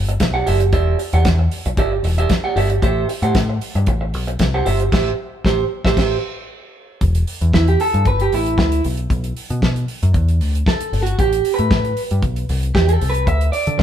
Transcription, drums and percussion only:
0.09 closed hi-hat soft
0.20 kick loud
0.20 snare loud
0.20 closed hi-hat medium
0.47 open hi-hat medium
0.60 closed hi-hat soft
0.73 kick loud
0.73 closed hi-hat medium
0.99 open hi-hat medium
1.13 closed hi-hat soft
1.25 kick loud
1.25 snare loud
1.25 closed hi-hat medium
1.51 open hi-hat medium
1.65 closed hi-hat soft
1.77 kick loud
1.77 closed hi-hat medium
2.04 open hi-hat medium
2.18 closed hi-hat soft
2.29 kick loud
2.29 snare loud
2.29 closed hi-hat medium
2.57 open hi-hat medium
2.70 closed hi-hat soft
2.82 kick loud
2.82 closed hi-hat medium
3.09 open hi-hat medium
3.23 closed hi-hat soft
3.35 kick loud
3.35 snare loud
3.35 closed hi-hat medium
3.61 open hi-hat medium
3.75 closed hi-hat soft
3.86 kick loud
3.86 closed hi-hat soft
4.14 open hi-hat medium
4.28 closed hi-hat soft
4.39 kick loud
4.39 snare loud
4.39 closed hi-hat medium
4.66 open hi-hat medium
4.80 closed hi-hat soft
4.92 kick loud
4.92 snare loud
4.92 crash medium
5.45 kick loud
5.45 snare loud
5.85 kick loud
5.85 snare loud
5.97 kick medium
5.97 snare medium
5.97 crash medium
7.01 kick loud
7.01 closed hi-hat medium
7.15 closed hi-hat soft
7.27 open hi-hat medium
7.41 closed hi-hat soft
7.53 kick loud
7.53 snare loud
7.68 closed hi-hat soft
7.80 open hi-hat medium
7.94 closed hi-hat soft
8.05 kick loud
8.05 closed hi-hat soft
8.20 closed hi-hat soft
8.32 open hi-hat medium
8.46 closed hi-hat soft
8.58 kick loud
8.58 snare loud
8.72 closed hi-hat medium
8.84 open hi-hat medium
8.97 closed hi-hat soft
9.10 kick loud
9.10 closed hi-hat medium
9.24 closed hi-hat soft
9.37 open hi-hat medium
9.50 closed hi-hat soft
9.62 kick loud
9.62 snare loud
9.76 closed hi-hat soft
9.88 open hi-hat medium
10.03 closed hi-hat soft
10.14 kick loud
10.14 closed hi-hat medium
10.28 closed hi-hat soft
10.41 open hi-hat medium
10.55 closed hi-hat soft
10.66 kick loud
10.66 snare loud
10.80 closed hi-hat medium
10.93 open hi-hat medium
11.06 closed hi-hat medium
11.19 kick loud
11.19 closed hi-hat medium
11.32 closed hi-hat medium
11.45 open hi-hat medium
11.58 closed hi-hat soft
11.71 kick loud
11.71 snare loud
11.85 closed hi-hat soft
11.97 open hi-hat medium
12.11 closed hi-hat soft
12.22 kick loud
12.22 closed hi-hat soft
12.36 closed hi-hat soft
12.49 open hi-hat medium
12.63 closed hi-hat soft
12.75 kick loud
12.75 snare loud
12.89 closed hi-hat medium
13.01 open hi-hat medium
13.14 closed hi-hat soft
13.27 kick loud
13.27 closed hi-hat medium
13.41 closed hi-hat soft
13.53 open hi-hat medium
13.67 closed hi-hat soft
13.79 kick loud
13.79 snare loud

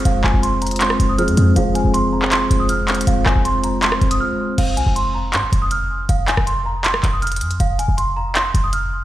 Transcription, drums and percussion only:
0.05 closed hi-hat medium
0.24 clap loud
0.43 closed hi-hat medium
0.62 closed hi-hat medium
0.62 open hi-hat medium
0.67 closed hi-hat medium
0.71 closed hi-hat medium
0.76 closed hi-hat medium
0.81 clap loud
0.81 closed hi-hat medium
0.90 cross-stick loud
1.00 closed hi-hat medium
1.18 closed hi-hat medium
1.28 closed hi-hat medium
1.37 closed hi-hat loud
1.56 closed hi-hat medium
1.75 closed hi-hat medium
1.94 closed hi-hat medium
2.22 clap medium
2.32 clap loud
2.32 closed hi-hat medium
2.51 closed hi-hat medium
2.69 closed hi-hat medium
2.88 clap loud
2.88 closed hi-hat medium
2.95 closed hi-hat medium
3.01 closed hi-hat medium
3.07 closed hi-hat medium
3.26 cross-stick medium
3.26 clap loud
3.45 closed hi-hat medium
3.64 closed hi-hat medium
3.83 clap loud
3.83 closed hi-hat medium
3.92 cross-stick loud
4.01 closed hi-hat soft
4.11 closed hi-hat medium
4.58 closed hi-hat medium
4.58 crash loud
4.77 closed hi-hat medium
4.96 closed hi-hat medium
5.33 clap loud
5.33 closed hi-hat medium
5.53 closed hi-hat medium
5.71 closed hi-hat medium
6.09 closed hi-hat medium
6.28 clap loud
6.28 closed hi-hat medium
6.37 cross-stick loud
6.47 closed hi-hat medium
6.84 clap loud
6.84 closed hi-hat medium
6.94 cross-stick loud
7.03 clap medium
7.03 closed hi-hat medium
7.22 closed hi-hat soft
7.27 closed hi-hat medium
7.32 closed hi-hat medium
7.36 closed hi-hat medium
7.41 closed hi-hat medium
7.41 open hi-hat medium
7.51 closed hi-hat soft
7.60 closed hi-hat medium
7.79 closed hi-hat medium
7.98 closed hi-hat medium
8.35 clap loud
8.35 closed hi-hat medium
8.55 closed hi-hat medium
8.73 closed hi-hat medium

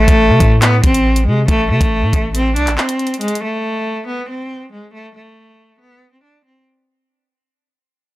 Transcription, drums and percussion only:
0.08 kick medium
0.08 closed hi-hat medium
0.40 kick loud
0.40 closed hi-hat medium
0.62 clap loud
0.62 closed hi-hat medium
0.84 kick medium
0.84 closed hi-hat medium
0.94 closed hi-hat medium
1.16 closed hi-hat medium
1.48 kick loud
1.48 closed hi-hat medium
1.81 kick medium
1.81 closed hi-hat medium
2.13 kick loud
2.13 closed hi-hat medium
2.35 closed hi-hat medium
2.56 closed hi-hat medium
2.67 clap medium
2.67 closed hi-hat medium
2.78 clap loud
2.89 closed hi-hat medium
2.99 closed hi-hat soft
3.07 closed hi-hat soft
3.14 closed hi-hat medium
3.21 closed hi-hat medium
3.28 closed hi-hat medium
3.35 closed hi-hat medium

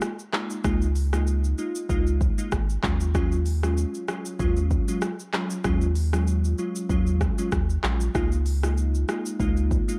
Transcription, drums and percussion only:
0.02 cross-stick loud
0.02 shaker medium
0.19 shaker medium
0.33 cross-stick loud
0.33 clap loud
0.33 shaker medium
0.50 shaker medium
0.64 kick loud
0.64 cross-stick loud
0.64 shaker medium
0.82 shaker medium
0.96 open hi-hat medium
0.96 shaker medium
1.13 cross-stick medium
1.13 shaker medium
1.27 shaker medium
1.44 shaker medium
1.58 shaker medium
1.75 shaker loud
1.89 kick medium
1.89 shaker medium
2.07 shaker soft
2.21 kick medium
2.21 shaker medium
2.38 shaker loud
2.52 kick medium
2.52 cross-stick loud
2.52 shaker medium
2.70 shaker medium
2.83 kick loud
2.83 cross-stick loud
2.83 clap loud
2.83 shaker medium
3.00 shaker medium
3.15 kick loud
3.15 cross-stick loud
3.15 shaker medium
3.32 shaker medium
3.46 open hi-hat medium
3.46 shaker medium
3.63 cross-stick medium
3.63 shaker medium
3.77 shaker medium
3.95 shaker medium
4.08 cross-stick loud
4.08 shaker medium
4.25 shaker loud
4.39 kick medium
4.39 shaker medium
4.57 shaker medium
4.71 kick medium
4.71 shaker medium
4.88 shaker loud
5.02 cross-stick loud
5.02 shaker medium
5.20 shaker medium
5.33 cross-stick loud
5.33 clap loud
5.33 shaker medium
5.50 shaker medium
5.64 kick loud
5.64 cross-stick loud
5.64 shaker medium
5.81 shaker medium
5.95 open hi-hat medium
5.95 shaker medium
6.13 cross-stick medium
6.13 shaker medium
6.27 shaker medium
6.44 shaker medium
6.58 shaker medium
6.76 shaker medium
6.89 kick medium
6.89 shaker medium
7.07 shaker soft
7.21 kick medium
7.21 cross-stick medium
7.21 shaker medium
7.38 shaker loud
7.52 kick medium
7.52 cross-stick loud
7.52 shaker medium
7.70 shaker medium
7.84 cross-stick loud
7.84 clap loud
7.84 shaker medium
8.01 shaker medium
8.15 kick loud
8.15 cross-stick loud
8.15 shaker medium
8.32 shaker medium
8.46 open hi-hat medium
8.46 shaker medium
8.63 cross-stick medium
8.63 shaker medium
8.77 shaker medium
8.95 shaker medium
9.09 cross-stick loud
9.09 shaker medium
9.26 shaker loud
9.40 kick medium
9.40 shaker medium
9.57 shaker medium
9.71 kick medium
9.71 shaker medium
9.89 shaker loud

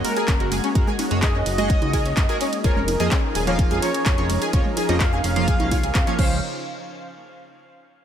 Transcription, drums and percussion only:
0.05 open hi-hat loud
0.05 ride medium
0.17 closed hi-hat medium
0.28 kick loud
0.28 clap loud
0.28 closed hi-hat medium
0.40 closed hi-hat soft
0.52 open hi-hat loud
0.52 ride medium
0.52 low conga medium
0.64 closed hi-hat medium
0.75 kick loud
0.75 closed hi-hat medium
0.87 low conga medium
0.99 open hi-hat loud
0.99 ride medium
0.99 high conga medium
1.11 closed hi-hat medium
1.22 kick loud
1.22 clap loud
1.22 closed hi-hat medium
1.46 open hi-hat medium
1.46 ride medium
1.58 closed hi-hat medium
1.70 kick loud
1.70 closed hi-hat medium
1.82 closed hi-hat soft
1.82 high conga medium
1.93 kick medium
1.93 open hi-hat loud
1.93 ride medium
1.93 high conga medium
2.05 closed hi-hat medium
2.17 kick loud
2.17 clap loud
2.17 closed hi-hat medium
2.29 closed hi-hat soft
2.41 open hi-hat medium
2.41 ride medium
2.53 closed hi-hat medium
2.64 kick loud
2.64 closed hi-hat medium
2.76 low conga medium
2.88 open hi-hat medium
2.88 ride medium
2.88 high conga medium
3.00 closed hi-hat medium
3.11 kick loud
3.11 clap loud
3.11 closed hi-hat medium
3.35 open hi-hat medium
3.35 ride medium
3.47 closed hi-hat medium
3.59 kick loud
3.59 closed hi-hat medium
3.71 closed hi-hat soft
3.71 low conga medium
3.82 open hi-hat loud
3.82 ride medium
3.94 closed hi-hat medium
4.06 kick loud
4.06 clap loud
4.06 closed hi-hat medium
4.18 closed hi-hat soft
4.30 open hi-hat medium
4.30 ride medium
4.30 low conga medium
4.42 closed hi-hat medium
4.53 kick loud
4.53 closed hi-hat medium
4.65 low conga medium
4.77 open hi-hat loud
4.77 ride medium
4.77 high conga medium
4.89 closed hi-hat medium
5.00 kick loud
5.00 clap loud
5.00 closed hi-hat medium
5.24 open hi-hat medium
5.24 ride medium
5.36 closed hi-hat medium
5.48 kick loud
5.48 closed hi-hat medium
5.60 closed hi-hat soft
5.60 high conga loud
5.71 kick medium
5.71 open hi-hat loud
5.71 ride medium
5.71 high conga medium
5.83 closed hi-hat medium
5.95 kick loud
5.95 clap loud
5.95 closed hi-hat medium
6.07 closed hi-hat soft
6.19 kick loud
6.19 crash medium

